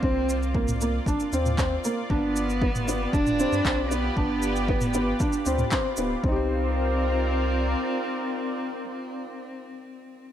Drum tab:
SH |--xx-xx-xxxxx-x-|--xx-xx-xxxxx-x-|--xx-xx-xxxxx-x-|----------------|
CP |------------x---|------------x---|------------x---|----------------|
T2 |-----o-----o----|-----o---o------|-----o-----o----|----------------|
BD |o---o---o---o---|o---o---o---o---|o---o---o---o---|o---------------|

SH |----------------|
CP |----------------|
T2 |----------------|
BD |----------------|